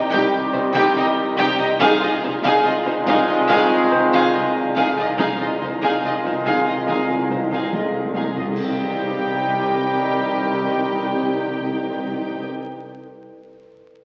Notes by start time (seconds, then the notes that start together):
Already playing: C2 D#3 G3 C4 G4 D#5 A#6
0.11 C2 C3 D#4 G4 G5, taiko
0.53 C2 C3 C4 D#4 C5, taiko low
0.73 C3 D#4 G4 G5, taiko
0.94 C2 C3 D#4 D#5
1.36 C2 C3 D#4 G4 G5
1.58 C3 D#4 D#5, taiko low
1.79 C2 C3 D#3 G#3 C4 D#4 F4 G#4 D#5 F5, taiko
1.83 F5
1.96 C3 F4
2.00 C3 D#4 D#5, taiko low
2.11 C3
2.18 C3
2.23 C2 D#4 C5, taiko low
2.34 C3
2.41 C3 F5, taiko
2.45 D#4 G#4
2.49 C3
2.55 C3
2.64 C2 C3 D#4 F4 D#5
2.78 C3
2.85 C3 D#4 C5, taiko low
2.94 C3
3.01 C3
3.06 C2 C3 D#4 G#4 F5, taiko
3.28 C3 D#4 F4 D#5
3.33 C3
3.40 C3
3.47 C2 C3 D#4 G#4 F5, taiko
3.55 C3
3.62 C3
3.69 C3
3.76 C3
3.83 C3
3.91 C2 C3 D#4 C5 G5 G6, taiko low
3.98 C3
4.06 C3
4.12 C3 D#4 G#4 F5, taiko
4.20 C3
4.27 C3
4.33 C2 C3 D#4 F4 D#5
4.43 C3
4.50 C3
4.58 C3
4.67 C3
4.74 C2 C3 D#4 G#4 F5
4.90 C3
4.96 C3 D#4 F4 D#5, taiko low
5.04 C3
5.12 C3
5.17 C2 C3 D#3 G#3 C4 D#4 F4 G#4 D#5 F5, taiko
5.26 C3
5.33 C3
5.38 C3 D#4 F4 D#5, taiko low
5.48 C3
5.56 C3
5.61 C2 C3 D#4 C5, taiko low
5.70 C3
5.78 C3 D#4
5.82 C3 G#4 F5, taiko
5.87 C3
5.93 C3
6.02 C2 C3 D#4 F4 D#5
6.09 C3
6.17 C3
6.24 C3 D#4 C5, taiko low
6.33 C3
6.40 C3
6.45 C2 C3 D#4 G#4 F5, taiko
6.56 C3
6.64 C3 D#4 F4
6.69 C3 D#5
6.77 C3
6.85 C2 C3 D#4 G#4 F5, taiko
6.92 C3
6.99 C3
7.06 C3
7.14 C3
7.21 C3
7.28 C2 C3 D#4 C5, taiko low
7.36 C3
7.44 C3
7.51 C3 D#4 G#4 F5, taiko
7.58 C3
7.66 C3
7.72 C2 C3 D#4 F4 D#5, taiko high
7.81 C3
7.88 C3
7.94 C3, taiko high
8.04 C3
8.10 C3 D#4
8.15 C2 C3 G#4 F5, taiko high
8.19 C3
8.26 C3
8.34 C3 D#4 D#5, taiko low
8.39 C3 F4
8.48 C3
8.56 C2 C3 D#3 G3 C4 D#4 G4 D#5 G5, concert bass drum, crash
8.64 C3
8.72 C3
8.80 C3
8.88 C3
8.96 C3
9.05 C3
9.12 C3
9.19 C3
9.27 C3
9.34 C3
9.41 C3
9.48 C3
9.55 C3
9.63 C3
9.70 C3
9.77 C3
9.85 C3
9.93 C3
10.00 C3
10.08 C3
10.15 C3
10.22 C3
10.30 C3
10.37 C3
10.45 C3
10.54 C3
10.61 C3
10.69 C3
10.77 C3
10.84 C3
10.92 C3
11.00 C3
11.07 C3
11.14 C3
11.22 C3
11.30 C3
11.38 C3
11.45 C3
11.53 C3
11.60 C3
11.67 C3
11.74 C3
11.82 C3
11.90 C3
11.98 C3
12.05 C3
12.13 C3
12.21 C3
12.29 C3
12.36 C3